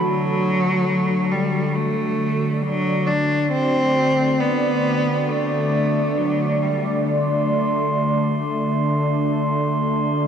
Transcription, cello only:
0.01 F#3
1.31 G3
1.75 A3
2.62 F#3
3.06 D4
3.51 C4
4.40 B3
5.29 A3
6.18 F#3
6.62 G3

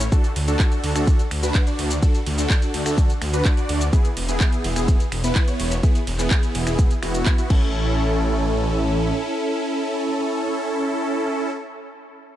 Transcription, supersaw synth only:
0.12 D4 F#4 A4
0.48 D4 F#4 A4
0.95 D4 F#4 A4
1.43 D4 F#4 B4
1.67 D4 F#4 D5
2.02 D4 F#4 A4
2.38 D4 F#4 A4
2.86 D4 F#4 A4
3.33 D4 F#4 B4
3.57 D4 F#4 D5
3.93 B3 E4 G#4
4.29 B3 E4 G#4
4.76 B3 E4 G#4
5.24 B3 E4 B4
5.48 B3 E4 C#5
5.83 B3 E4 G#4
6.19 B3 E4 G#4
6.67 B3 E4 G#4
7.03 B3 E4 F#4
7.38 B3 E4 F#4
7.50 C#4 E4 A4

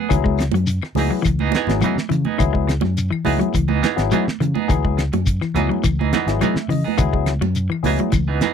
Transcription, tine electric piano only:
0.09 F#3 B3 E4 G#4
0.96 F#3 B3 E4 G#4
1.68 F#3 B3 E4 G#4
2.39 F#3 B3 E4 G#4
3.25 F#3 B3 E4 G#4
3.96 F#3 B3 E4 G#4
4.68 F#3 B3 E4 G#4
5.56 F#3 B3 E4 G#4
6.13 F#5
6.27 F#3 B3 E4 G#4
6.41 E5
6.70 D#5
6.98 F#3 B3 E4 G#4
7.83 F#3 B3 E4 G#4

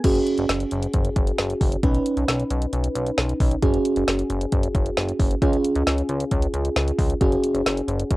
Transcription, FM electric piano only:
0.04 C#4 F#4 G#4
1.83 C#4 D#4 B4
3.62 C#4 F#4 G#4
5.42 C#4 F4 G#4
7.21 C#4 F#4 G#4

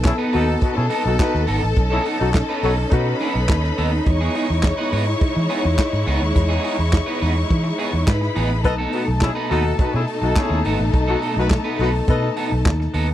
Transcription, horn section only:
0.04 C#4 E4 G#4
0.33 D#4 F#4 A4
0.61 D#4 F#4 B4
0.76 C#4 E4 G#4
1.04 D#4 F#4 A4
1.18 D#4 F#4 B4
1.90 C#4 E4 G#4
2.19 D#4 F#4 A4
2.62 F#4 A4 C#5
2.90 D#4 F#4 B4
8.64 A4 B4 D#5
8.92 D#4 F#4 B4
9.21 C#4 E4 G#4
9.49 D#4 F#4 A4
9.78 D#4 F#4 B4
9.93 C#4 E4 G#4
10.21 D#4 F#4 A4
10.36 C#4 E4 G#4
11.08 D#4 F#4 A4
11.37 D#4 F#4 B4
11.80 D#4 F#4 B4
12.08 A4 B4 D#5

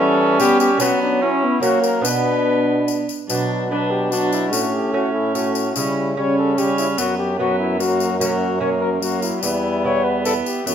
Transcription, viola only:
0.00 C#4
0.81 B3
1.22 C#4
1.62 A#3
2.05 B3
3.29 D4
3.71 D4
4.11 D4
4.51 C#4
5.75 C#4
6.17 C#4
6.56 C#4
6.98 B3
7.39 B3
7.80 A#3
8.22 A#3
8.61 A#3
9.03 A#3
9.43 B3
10.66 B3

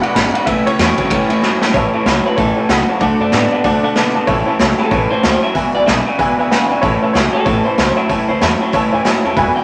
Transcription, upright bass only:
0.04 muted upright bass stroke
0.15 G#1
0.35 muted upright bass stroke
0.47 A1
0.66 C#2
0.79 E2
1.10 D2
1.30 F#2
1.42 F#2
1.61 E2
1.74 A1
1.93 muted upright bass stroke
2.06 C#2
2.38 A1
2.69 C#2
3.01 D2
3.20 F#2
3.33 A2
3.64 F#2
3.84 B2
3.97 B2
4.16 G#1
4.28 A1
4.60 C#2
4.79 muted upright bass stroke
4.91 A1
5.12 muted upright bass stroke
5.25 D2
5.55 E1
5.76 G#1
5.88 B1
6.19 A1
6.39 C#2
6.51 D2
6.70 G#1
6.83 A1
7.02 muted upright bass stroke
7.15 C#2
7.46 A1
7.78 C#2
7.97 muted upright bass stroke
8.10 A1
8.28 C#2
8.42 E2
8.61 muted upright bass stroke
8.73 D2
8.93 F#2
9.06 F#2
9.25 E2
9.36 E1

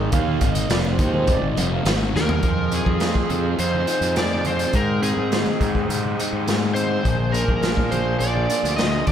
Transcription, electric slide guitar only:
2.17 A#4
2.75 G#4
3.60 C5
4.17 D5
4.47 C5
4.75 A#4
5.03 G#4
6.75 C5
7.32 A#4
7.91 C5
8.19 D5
8.77 D#5
9.07 D5

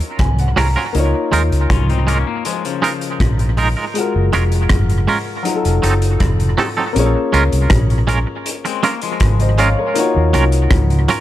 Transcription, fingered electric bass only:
0.20 C2
0.57 C2
0.95 C#2
1.33 D#2
1.51 C#2
1.71 C2
3.21 A#1
4.16 F#1
4.34 F1
4.71 F#1
5.65 F1
5.84 F#1
6.21 F1
6.96 A#1
7.34 C#2
7.53 C2
7.71 A#1
9.21 G#1
10.16 D#2
10.35 C2
10.71 C#2

